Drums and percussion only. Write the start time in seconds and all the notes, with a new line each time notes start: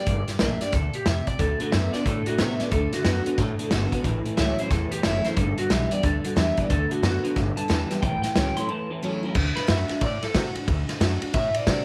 0.06 kick, closed hi-hat
0.28 snare, closed hi-hat
0.39 snare, closed hi-hat
0.61 snare, closed hi-hat
0.72 kick, snare, closed hi-hat
0.93 closed hi-hat
1.06 snare, closed hi-hat
1.27 kick, closed hi-hat
1.39 kick, closed hi-hat
1.60 closed hi-hat
1.72 snare, closed hi-hat
1.94 snare, closed hi-hat
2.06 kick, closed hi-hat
2.26 closed hi-hat
2.39 snare, closed hi-hat
2.60 snare, closed hi-hat
2.71 kick, closed hi-hat
2.93 snare, closed hi-hat
3.05 snare, closed hi-hat
3.26 closed hi-hat
3.38 kick, snare, closed hi-hat
3.59 closed hi-hat
3.71 snare, closed hi-hat
3.92 kick, closed hi-hat
4.04 kick, closed hi-hat
4.25 closed hi-hat
4.38 snare, closed hi-hat
4.58 closed hi-hat
4.71 kick, snare, closed hi-hat
4.92 closed hi-hat
5.03 snare, closed hi-hat
5.25 snare, closed hi-hat
5.37 kick, closed hi-hat
5.58 closed hi-hat
5.70 snare, closed hi-hat
5.91 closed hi-hat
6.03 kick, closed hi-hat
6.24 closed hi-hat
6.37 snare, closed hi-hat
6.57 kick, closed hi-hat
6.70 kick, closed hi-hat
6.91 closed hi-hat
7.03 snare, closed hi-hat
7.25 closed hi-hat
7.36 kick, snare, closed hi-hat
7.57 closed hi-hat
7.70 snare, closed hi-hat
7.91 snare, closed hi-hat
8.03 kick, closed hi-hat
8.23 snare, closed hi-hat
8.36 snare, closed hi-hat
8.57 closed hi-hat
9.35 kick, crash
9.56 snare, ride
9.68 snare, ride
9.89 snare, ride
10.01 kick, snare, ride
10.23 snare, ride
10.35 kick, snare, ride
10.55 ride
10.68 kick, ride
10.89 snare, ride
11.01 snare, ride
11.22 ride
11.34 kick, snare, ride
11.54 ride
11.67 kick, snare, ride